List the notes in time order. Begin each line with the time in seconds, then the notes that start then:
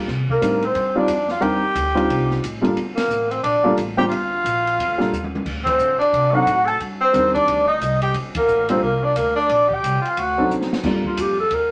0.08 C3, kick, snare
0.29 A#3 A#4, kick
0.41 A2 G3 C4 D4 D#4 A#4, kick, hi-hat pedal, ride
0.62 C4 C5, ride
0.75 G2, kick, ride
0.95 G3 C4 D4 D#4 F4 D5
1.08 F2, kick, hi-hat pedal, ride
1.29 F4 F5, snare
1.40 D#2 G3 C4 D4 D#4 G4 A#4 G5, kick, ride
1.75 D2, kick, hi-hat pedal, ride
1.95 G3 C4 D4 D#4 F4, ride
2.08 C2, kick, ride
2.31 snare
2.43 A1, kick, hi-hat pedal, ride
2.61 G3 A#3 D4 F4 A4, ride
2.76 G1, kick, ride
2.96 A#3 A#4, snare, ride
3.08 A1, hi-hat pedal
3.30 C4 C5, ride
3.43 A#1 D4 D5, kick, ride
3.64 G3 A#3 D4 F4 A4
3.77 A1, kick, hi-hat pedal, ride
3.97 G3 A#3 D4 F4 G4 C5 G5
4.09 G1 F4 F5, kick, ride
4.44 A#1, kick, hi-hat pedal, ride
4.67 ride
4.79 F2, kick, ride
4.88 D2
4.98 A#1 G3 A#3 D4 F4 A4, snare
5.12 D#2, hi-hat pedal
5.24 high tom
5.35 high tom
5.46 D2, kick, crash
5.65 C4, kick, ride
5.69 C5
5.79 D3, hi-hat pedal
5.99 D4 D5, muted upright bass stroke, ride
6.13 C3, kick, ride
6.31 F#3 C4 D4 D#4 F#4 A4 F#5
6.46 A2, kick, hi-hat pedal, ride
6.65 A4 A5, ride
6.80 G2, kick, ride
7.01 C4 C5
7.13 D#2 D#3 G3 C4 D4 A#4, kick, hi-hat pedal, ride
7.34 D4 D5, kick, ride
7.47 D2, kick, ride
7.67 D#4 D#5
7.80 C2, kick, hi-hat pedal, ride
8.02 G4 G5, ride
8.14 G1, kick, ride
8.35 A#3 A#4, kick, ride
8.48 A1, hi-hat pedal
8.69 G3 A#3 C4 D4 F4 A4 C5, ride
8.81 C2 A#3 A#4, kick
9.03 D4 D5
9.15 D2 A#3 A#4, kick, hi-hat pedal, ride
9.36 D4 D5
9.49 A#1, kick, ride
9.69 G4, kick
9.74 G5
9.83 C2, kick, hi-hat pedal, ride
10.02 F4, muted upright bass stroke, ride
10.09 F5
10.17 D2 F#4, kick, ride
10.22 F#5
10.38 F#3 C4 D4 D#4 A4
10.49 D#2, hi-hat pedal
10.62 snare
10.71 muted upright bass stroke, snare
10.83 G2 G3 A#3 D4 F4 A4, kick, snare, crash
11.04 F4, muted upright bass stroke, kick
11.17 F2 G4, kick, hi-hat pedal, ride
11.40 A4
11.50 D#2 A#4, kick, ride